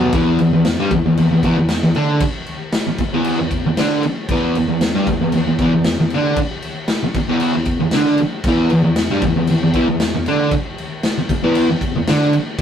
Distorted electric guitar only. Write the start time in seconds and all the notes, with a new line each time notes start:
Already playing: B2 F#3 B3
0.14 E2 E3
0.40 E2
0.53 E2
0.80 G2 G3
0.92 E2
1.06 E2
1.19 E2
1.32 E2
1.44 E2 E3
1.58 E2
1.83 E2
1.95 D3 D4
2.87 muted distorted electric guitar stroke
3.00 muted distorted electric guitar stroke
3.13 E2 E3
3.40 E2
3.66 E2
3.79 D3 D4
4.05 muted distorted electric guitar stroke
4.30 E2 E3
4.57 E2
4.69 E2
4.95 G2 G3
5.09 E2
5.22 E2
5.35 E2
5.48 E2
5.61 E2 E3
5.74 E2
6.00 E2
6.14 D3 D4
7.03 muted distorted electric guitar stroke
7.16 muted distorted electric guitar stroke
7.29 E2 E3
7.55 E2
7.80 E2
7.94 D3 D4
8.21 muted distorted electric guitar stroke
8.47 E2 E3
8.72 E2
8.84 E2
9.10 G2 G3
9.24 E2
9.36 E2
9.51 E2
9.63 E2
9.74 E2 E3
9.89 E2
10.15 E2
10.28 D3 D4
11.18 muted distorted electric guitar stroke
11.30 muted distorted electric guitar stroke
11.43 E2 E3
11.70 E2
11.96 E2
12.08 D3 D4
12.34 muted distorted electric guitar stroke